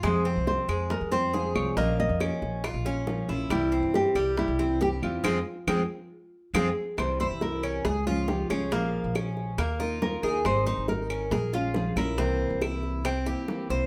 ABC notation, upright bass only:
X:1
M:4/4
L:1/16
Q:1/4=138
K:Fm
V:1 name="Upright bass" clef=bass
F,,3 C,,2 z F,,3 F,,4- F,, C,,2 | B,,,3 F,,2 z B,,,3 B,,,4- B,,, B,,,2 | C,,3 G,,2 z C,,3 C,,4- C,, =E,,2 | F,,2 z2 F,,2 z6 F,,2 z2 |
C,,3 C,,4- C,, D,,6 D,,2 | B,,,3 B,,,4- B,,, E,,6 E,,2 | A,,,3 A,,,4- A,,, B,,,6 B,,,2 | C,,3 C,,8 z3 C,,2 |]